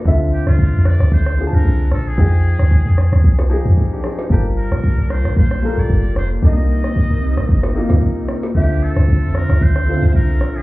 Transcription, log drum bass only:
X:1
M:4/4
L:1/16
Q:"Swing 16ths" 1/4=113
K:Dphr
V:1 name="Log drum bass" clef=bass
D,,3 D,,2 F,,2 D,, D,,3 D,, C,,2 B,,,2 | F,,3 E,,2 F,,2 E,, C,,3 F,, z4 | G,,,3 B,,,2 C,,2 B,,, B,,,3 B,,, G,,,2 F,,,2 | C,,3 B,,,2 C,,2 B,,, G,,,3 D,, z4 |
D,,3 D,,2 F,,2 D,, D,,3 D,, C,,2 B,,,2 |]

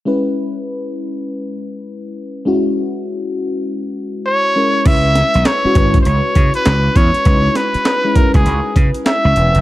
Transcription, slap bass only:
X:1
M:4/4
L:1/16
Q:"Swing 16ths" 1/4=100
K:C#m
V:1 name="Slap bass" clef=bass
z16 | z16 | C,,3 B,,, z2 G,,,2 C,, z C, z C,,2 E,, z | C,,2 z4 z C,, C,, z C, z2 C,, E,,, ^E,,, |]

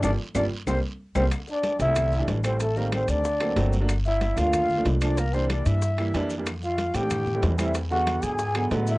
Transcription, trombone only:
X:1
M:4/4
L:1/8
Q:1/4=187
K:Gmix
V:1 name="Trombone"
D z D z C z2 C | [K:Aphr] z D2 E3 z C | A, B, C D4 z | z E2 F3 z D |
B, C D E4 z | z F2 G3 z E | z _G2 ^G3 z E |]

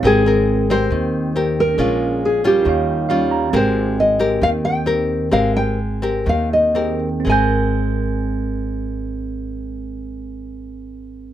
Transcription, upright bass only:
X:1
M:4/4
L:1/8
Q:1/4=130
K:Ab
V:1 name="Upright bass" clef=bass
A,,,4 E,,4 | B,,,4 E,,4 | A,,,4 E,,4 | A,,,4 E,,4 |
A,,,8- | A,,,8 |]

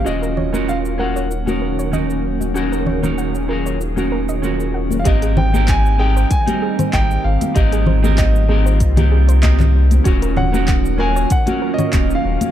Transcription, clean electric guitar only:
X:1
M:4/4
L:1/16
Q:"Swing 16ths" 1/4=96
K:Ab
V:1 name="Clean electric guitar"
[DF_GB]3 [DFGB]3 [DFGB]2 z [DEGB]3 [DEGB]4 | [DE_GB]3 [DEGB]3 [DFGB]2 z [DEGB]3 [DFGB]4 | [CEGB]3 [CEGB]3 [CEGB]2 z [G,CEB]3 [CEGB]4 | [CEGB]3 [CEGB]3 [CEGB]2 z [CEGB]3 [CEGB]4 |
[DF_GB]3 [DEGB]3 [DFGB]2 z [DFGB]3 [DFGB]4 |]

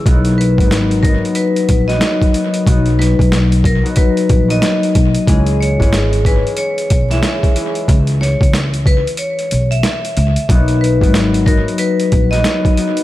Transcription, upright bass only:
X:1
M:4/4
L:1/16
Q:"Swing 16ths" 1/4=92
K:B
V:1 name="Upright bass" clef=bass
B,,,3 G,,,4 z3 A,,,2 z4 | B,,,3 B,,,4 z3 A,,,2 z2 B,,, z | C,,3 G,,,4 z3 B,,,2 z4 | C,,3 C,,4 z3 B,,,2 z2 C,, z |
B,,,3 G,,,4 z3 A,,,2 z4 |]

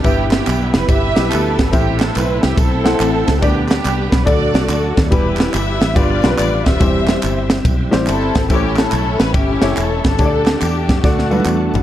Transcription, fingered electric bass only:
X:1
M:4/4
L:1/8
Q:"Swing" 1/4=142
K:Ador
V:1 name="Fingered electric bass" clef=bass
G,,,2 B,,, F,,, G,,, B,,, D,, _A,,, | A,,,2 B,,, C,, B,,,2 A,,, ^C,, | D,,2 C,, B,,, D,, C,, D,, _E,, | E,,,2 G,,, A,,, G,,, B,,, A,,, _E,,, |
E,,,2 G,,,2 B,,, A,,, G,,, _A,,, | A,,,2 B,,, A,,, G,,, F,,, E,,, G,,, | D,,2 E,, F,, D,,2 E,, _A,,, |]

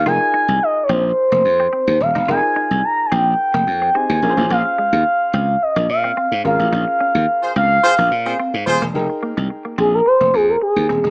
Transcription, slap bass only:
X:1
M:4/4
L:1/16
Q:1/4=108
K:Fm
V:1 name="Slap bass" clef=bass
F,,, z2 C,, z2 B,,,2 z F,,, F,,2 z E,, E,,, =E,,, | F,,, z2 C,, z2 B,,,2 z F,,, F,,2 z E,, B,,, =A,,, | B,,, z2 E,, z2 D,,2 z B,,, B,,2 z A,, A,,, =A,,, | B,,, z2 E,, z2 D,,2 z B,,, B,,2 z A,, E,,, =E,,, |
F,,, z2 C,, z2 B,,,2 z F,,, F,,2 z E,, E,,, =E,,, |]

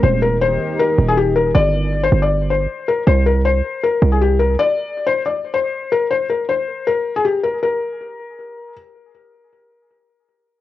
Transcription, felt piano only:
X:1
M:4/4
L:1/16
Q:1/4=158
K:Gm
V:1 name="Felt piano"
c2 B2 c4 B3 _A G2 B2 | d4- d c2 d3 c4 B2 | c2 B2 c4 B3 _A G2 B2 | d4- d c2 d3 c4 B2 |
c2 B2 c4 B3 _A G2 B2 | B12 z4 | z16 |]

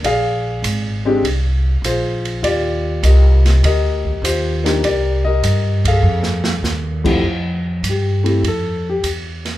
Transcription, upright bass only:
X:1
M:4/4
L:1/8
Q:"Swing" 1/4=100
K:Bb
V:1 name="Upright bass" clef=bass
B,,,2 _A,,,2 C,,2 B,,,2 | E,,2 C,,2 D,,2 E,,2 | C,,2 G,,2 F,,2 E,,2 | [K:F] F,,2 G,,2 F,,2 E,,2 |]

